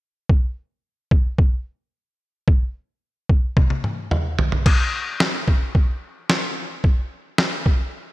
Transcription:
0.29 kick
1.11 kick
1.38 kick
2.48 kick
3.29 kick
3.57 kick, high tom
3.70 high tom
3.84 mid tom
4.11 mid tom
4.39 floor tom
4.52 floor tom
4.66 kick, crash
5.20 snare
5.48 kick
5.75 kick
6.30 snare
6.84 kick
7.38 snare
7.66 kick

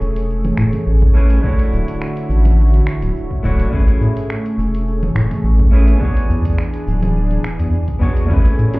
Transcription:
Already playing: A3 C#4 E4 G#4 B4 C#5
0.01 E1, shaker
0.16 open hi-hat, shaker
0.30 shaker
0.45 open hi-hat, low conga
0.57 A2, finger snap, shaker
0.73 open hi-hat, low conga, shaker
0.87 A1, shaker
1.02 kick
1.14 A3 C#4 E4 G#4 B4, shaker
1.30 open hi-hat, shaker
1.41 D3 A3 D4 E4 F#4, kick, shaker
1.46 F#4 C#5
1.59 open hi-hat
1.72 D1, shaker
1.88 open hi-hat, shaker
2.02 finger snap, shaker
2.17 open hi-hat
2.29 A1, shaker
2.45 open hi-hat, low conga, shaker
2.59 shaker
2.74 open hi-hat
2.87 finger snap, shaker
3.02 D1, open hi-hat, shaker
3.16 shaker
3.31 kick
3.43 D1 A3 D4 E4 F#4 C#5, kick, shaker
3.60 open hi-hat, shaker
3.69 A1 A3 C#4 E4 G#4, kick
3.73 G#4 B4, shaker
3.88 open hi-hat
4.01 A2, shaker
4.17 open hi-hat, shaker
4.30 finger snap, shaker
4.46 open hi-hat
4.58 E1, shaker
4.75 open hi-hat, shaker
4.88 shaker
5.03 open hi-hat, low conga
5.15 A2, finger snap, shaker
5.31 open hi-hat, low conga, shaker
5.44 A1, shaker
5.60 kick
5.71 A3 C#4 E4 G#4 B4, shaker
5.88 open hi-hat, shaker
5.98 E3 B3 D4 F#4, kick
6.02 G#4 C#5, shaker
6.17 open hi-hat
6.29 E2, shaker
6.45 kick, open hi-hat, shaker
6.58 finger snap, shaker
6.74 open hi-hat
6.87 D1, shaker
7.03 open hi-hat, low conga, shaker
7.16 shaker
7.31 open hi-hat
7.44 finger snap, shaker
7.60 E2, open hi-hat, shaker
7.73 shaker
7.88 kick, open hi-hat
7.99 E2 B3 D4 F#4 G#4 C#5, kick, shaker
8.17 open hi-hat, shaker
8.26 A1 A3 C#4 E4 C#5, kick
8.31 G#4 B4, high bongo, shaker
8.45 open hi-hat
8.59 A2, shaker
8.74 open hi-hat, high bongo, shaker

